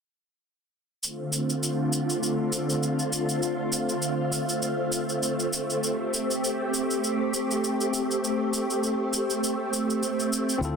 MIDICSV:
0, 0, Header, 1, 5, 480
1, 0, Start_track
1, 0, Key_signature, 0, "minor"
1, 0, Tempo, 600000
1, 816, Time_signature, 4, 2, 24, 8
1, 8609, End_track
2, 0, Start_track
2, 0, Title_t, "Tine electric piano"
2, 0, Program_c, 0, 4
2, 8466, Note_on_c, 0, 60, 68
2, 8485, Note_on_c, 0, 64, 67
2, 8502, Note_on_c, 0, 65, 62
2, 8519, Note_on_c, 0, 69, 79
2, 8609, Note_off_c, 0, 60, 0
2, 8609, Note_off_c, 0, 64, 0
2, 8609, Note_off_c, 0, 65, 0
2, 8609, Note_off_c, 0, 69, 0
2, 8609, End_track
3, 0, Start_track
3, 0, Title_t, "String machine"
3, 0, Program_c, 1, 50
3, 814, Note_on_c, 1, 50, 70
3, 816, Note_on_c, 1, 60, 65
3, 820, Note_on_c, 1, 57, 66
3, 820, Note_on_c, 1, 65, 76
3, 4623, Note_off_c, 1, 50, 0
3, 4626, Note_off_c, 1, 65, 0
3, 4661, Note_on_c, 1, 67, 77
3, 8466, Note_off_c, 1, 67, 0
3, 8500, Note_on_c, 1, 50, 70
3, 8501, Note_on_c, 1, 53, 78
3, 8609, Note_off_c, 1, 50, 0
3, 8609, Note_off_c, 1, 53, 0
3, 8609, Note_off_c, 1, 57, 0
3, 8609, Note_off_c, 1, 60, 0
3, 8609, End_track
4, 0, Start_track
4, 0, Title_t, "Fingered electric bass"
4, 0, Program_c, 2, 33
4, 8486, Note_on_c, 2, 38, 82
4, 8609, Note_off_c, 2, 38, 0
4, 8609, End_track
5, 0, Start_track
5, 0, Title_t, "Drums"
5, 828, Note_on_c, 9, 69, 38
5, 908, Note_off_c, 9, 69, 0
5, 1063, Note_on_c, 9, 69, 65
5, 1143, Note_off_c, 9, 69, 0
5, 1198, Note_on_c, 9, 69, 28
5, 1278, Note_off_c, 9, 69, 0
5, 1306, Note_on_c, 9, 69, 36
5, 1386, Note_off_c, 9, 69, 0
5, 1543, Note_on_c, 9, 69, 67
5, 1623, Note_off_c, 9, 69, 0
5, 1678, Note_on_c, 9, 69, 30
5, 1758, Note_off_c, 9, 69, 0
5, 1786, Note_on_c, 9, 69, 38
5, 1866, Note_off_c, 9, 69, 0
5, 2022, Note_on_c, 9, 69, 63
5, 2102, Note_off_c, 9, 69, 0
5, 2157, Note_on_c, 9, 69, 27
5, 2237, Note_off_c, 9, 69, 0
5, 2264, Note_on_c, 9, 69, 33
5, 2344, Note_off_c, 9, 69, 0
5, 2395, Note_on_c, 9, 69, 27
5, 2475, Note_off_c, 9, 69, 0
5, 2503, Note_on_c, 9, 69, 65
5, 2583, Note_off_c, 9, 69, 0
5, 2633, Note_on_c, 9, 69, 29
5, 2713, Note_off_c, 9, 69, 0
5, 2741, Note_on_c, 9, 69, 40
5, 2821, Note_off_c, 9, 69, 0
5, 2980, Note_on_c, 9, 69, 68
5, 3060, Note_off_c, 9, 69, 0
5, 3112, Note_on_c, 9, 69, 29
5, 3192, Note_off_c, 9, 69, 0
5, 3218, Note_on_c, 9, 69, 36
5, 3298, Note_off_c, 9, 69, 0
5, 3460, Note_on_c, 9, 69, 72
5, 3540, Note_off_c, 9, 69, 0
5, 3593, Note_on_c, 9, 69, 33
5, 3673, Note_off_c, 9, 69, 0
5, 3699, Note_on_c, 9, 69, 38
5, 3779, Note_off_c, 9, 69, 0
5, 3939, Note_on_c, 9, 69, 68
5, 4019, Note_off_c, 9, 69, 0
5, 4075, Note_on_c, 9, 69, 27
5, 4155, Note_off_c, 9, 69, 0
5, 4183, Note_on_c, 9, 69, 40
5, 4263, Note_off_c, 9, 69, 0
5, 4317, Note_on_c, 9, 69, 28
5, 4397, Note_off_c, 9, 69, 0
5, 4426, Note_on_c, 9, 69, 67
5, 4506, Note_off_c, 9, 69, 0
5, 4561, Note_on_c, 9, 69, 31
5, 4641, Note_off_c, 9, 69, 0
5, 4670, Note_on_c, 9, 69, 42
5, 4750, Note_off_c, 9, 69, 0
5, 4911, Note_on_c, 9, 69, 73
5, 4991, Note_off_c, 9, 69, 0
5, 5046, Note_on_c, 9, 69, 30
5, 5126, Note_off_c, 9, 69, 0
5, 5154, Note_on_c, 9, 69, 37
5, 5234, Note_off_c, 9, 69, 0
5, 5393, Note_on_c, 9, 69, 69
5, 5473, Note_off_c, 9, 69, 0
5, 5526, Note_on_c, 9, 69, 30
5, 5606, Note_off_c, 9, 69, 0
5, 5633, Note_on_c, 9, 69, 37
5, 5713, Note_off_c, 9, 69, 0
5, 5872, Note_on_c, 9, 69, 73
5, 5952, Note_off_c, 9, 69, 0
5, 6008, Note_on_c, 9, 69, 29
5, 6088, Note_off_c, 9, 69, 0
5, 6114, Note_on_c, 9, 69, 40
5, 6194, Note_off_c, 9, 69, 0
5, 6246, Note_on_c, 9, 69, 27
5, 6326, Note_off_c, 9, 69, 0
5, 6352, Note_on_c, 9, 69, 71
5, 6432, Note_off_c, 9, 69, 0
5, 6489, Note_on_c, 9, 69, 30
5, 6569, Note_off_c, 9, 69, 0
5, 6594, Note_on_c, 9, 69, 39
5, 6674, Note_off_c, 9, 69, 0
5, 6830, Note_on_c, 9, 69, 69
5, 6910, Note_off_c, 9, 69, 0
5, 6963, Note_on_c, 9, 69, 30
5, 7043, Note_off_c, 9, 69, 0
5, 7069, Note_on_c, 9, 69, 37
5, 7149, Note_off_c, 9, 69, 0
5, 7308, Note_on_c, 9, 69, 69
5, 7388, Note_off_c, 9, 69, 0
5, 7441, Note_on_c, 9, 69, 31
5, 7521, Note_off_c, 9, 69, 0
5, 7550, Note_on_c, 9, 69, 40
5, 7630, Note_off_c, 9, 69, 0
5, 7789, Note_on_c, 9, 69, 71
5, 7869, Note_off_c, 9, 69, 0
5, 7921, Note_on_c, 9, 69, 28
5, 8001, Note_off_c, 9, 69, 0
5, 8024, Note_on_c, 9, 69, 35
5, 8104, Note_off_c, 9, 69, 0
5, 8159, Note_on_c, 9, 69, 27
5, 8239, Note_off_c, 9, 69, 0
5, 8263, Note_on_c, 9, 69, 66
5, 8343, Note_off_c, 9, 69, 0
5, 8394, Note_on_c, 9, 69, 31
5, 8474, Note_off_c, 9, 69, 0
5, 8501, Note_on_c, 9, 69, 38
5, 8581, Note_off_c, 9, 69, 0
5, 8609, End_track
0, 0, End_of_file